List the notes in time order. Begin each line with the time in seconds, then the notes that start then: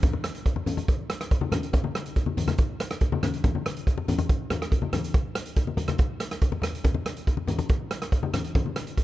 0.03 kick, closed hi-hat, low conga
0.13 high conga
0.24 cross-stick, closed hi-hat
0.35 closed hi-hat
0.46 kick, closed hi-hat
0.56 high conga
0.66 closed hi-hat, low conga
0.77 closed hi-hat, high conga
0.88 kick, closed hi-hat
1.10 cross-stick, closed hi-hat
1.21 cross-stick, closed hi-hat
1.31 kick, closed hi-hat
1.41 high conga
1.52 cross-stick, closed hi-hat, low conga
1.63 closed hi-hat
1.73 kick, closed hi-hat, low conga
1.84 high conga
1.95 cross-stick, closed hi-hat
2.06 closed hi-hat
2.16 kick, closed hi-hat
2.26 high conga
2.37 closed hi-hat, low conga
2.48 cross-stick, closed hi-hat, high conga
2.58 kick, closed hi-hat
2.80 cross-stick, closed hi-hat
2.91 cross-stick, closed hi-hat
3.01 kick, closed hi-hat
3.12 high conga
3.23 cross-stick, closed hi-hat, low conga
3.34 closed hi-hat
3.44 kick, closed hi-hat, low conga
3.55 high conga
3.66 cross-stick, closed hi-hat
3.77 closed hi-hat
3.87 kick, closed hi-hat
3.98 high conga
4.08 closed hi-hat, low conga
4.18 closed hi-hat, high conga
4.29 kick, closed hi-hat
4.50 cross-stick, closed hi-hat, low conga
4.62 cross-stick, closed hi-hat
4.72 kick, closed hi-hat
4.82 high conga
4.93 cross-stick, closed hi-hat, low conga
5.04 closed hi-hat
5.14 kick, closed hi-hat
5.35 cross-stick, closed hi-hat
5.46 closed hi-hat
5.56 kick, closed hi-hat
5.67 high conga
5.77 closed hi-hat, low conga
5.88 cross-stick, closed hi-hat, high conga
5.98 kick, closed hi-hat
6.20 cross-stick, closed hi-hat
6.31 cross-stick, closed hi-hat
6.42 kick, closed hi-hat
6.52 high conga
6.62 cross-stick, closed hi-hat, low conga
6.75 closed hi-hat
6.84 kick, closed hi-hat, low conga
6.94 high conga
7.06 cross-stick, closed hi-hat
7.17 closed hi-hat
7.27 kick, closed hi-hat
7.37 high conga
7.47 closed hi-hat, low conga
7.59 closed hi-hat, high conga
7.69 kick, closed hi-hat
7.91 cross-stick, closed hi-hat
8.02 cross-stick, closed hi-hat
8.12 kick, closed hi-hat
8.23 high conga
8.33 cross-stick, closed hi-hat, low conga
8.44 closed hi-hat
8.55 kick, closed hi-hat, low conga
8.66 high conga
8.76 cross-stick, closed hi-hat
8.87 closed hi-hat
8.97 kick, closed hi-hat